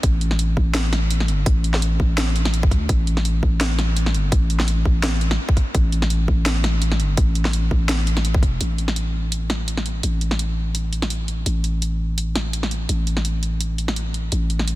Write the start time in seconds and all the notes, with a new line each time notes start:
0.03 A1, kick, closed hi-hat
0.21 closed hi-hat
0.31 snare
0.39 closed hi-hat
0.57 A1, kick
0.75 snare, closed hi-hat
0.93 snare, closed hi-hat
1.11 closed hi-hat
1.20 snare
1.28 G1, closed hi-hat
1.46 A1, kick, closed hi-hat
1.64 closed hi-hat
1.74 snare
1.82 closed hi-hat
2.00 A1, kick
2.18 snare, closed hi-hat
2.36 closed hi-hat
2.45 snare
2.54 closed hi-hat
2.63 E1, kick
2.71 D2, kick, closed hi-hat
2.89 A1, kick, closed hi-hat
3.07 closed hi-hat
3.17 snare
3.25 closed hi-hat
3.43 A1, kick
3.61 snare, closed hi-hat
3.79 snare, closed hi-hat
3.97 closed hi-hat
4.06 snare
4.14 G1, closed hi-hat
4.32 A1, kick, closed hi-hat
4.50 closed hi-hat
4.60 snare
4.68 closed hi-hat
4.85 A1, kick
5.03 snare, closed hi-hat
5.21 closed hi-hat
5.31 snare
5.49 kick
5.57 kick, closed hi-hat
5.75 A1, kick, closed hi-hat
5.92 closed hi-hat
6.02 snare
6.10 closed hi-hat
6.28 A1, kick
6.46 snare, closed hi-hat
6.64 snare, closed hi-hat
6.82 closed hi-hat
6.92 snare
7.00 G1, closed hi-hat
7.17 A1, kick, closed hi-hat
7.35 closed hi-hat
7.45 snare
7.53 closed hi-hat
7.71 A1, kick
7.89 snare, closed hi-hat
8.07 closed hi-hat
8.17 snare
8.25 closed hi-hat
8.34 kick
8.42 E1, kick, closed hi-hat
8.61 A1, closed hi-hat
8.78 closed hi-hat
8.88 snare
8.96 closed hi-hat
9.32 closed hi-hat
9.50 snare, closed hi-hat
9.68 closed hi-hat
9.77 snare
9.86 closed hi-hat
10.03 A1, closed hi-hat
10.21 closed hi-hat
10.31 snare
10.39 closed hi-hat
10.75 closed hi-hat
10.93 closed hi-hat
11.02 snare
11.10 closed hi-hat
11.28 closed hi-hat
11.46 A1, closed hi-hat
11.64 closed hi-hat
11.82 closed hi-hat
12.18 closed hi-hat
12.35 snare, closed hi-hat
12.53 closed hi-hat
12.63 snare
12.71 closed hi-hat
12.89 A1, closed hi-hat
13.07 closed hi-hat
13.17 snare
13.25 closed hi-hat
13.43 closed hi-hat
13.61 closed hi-hat
13.78 closed hi-hat
13.88 snare
13.96 closed hi-hat
14.14 closed hi-hat
14.32 A1, closed hi-hat
14.50 closed hi-hat
14.59 snare
14.68 closed hi-hat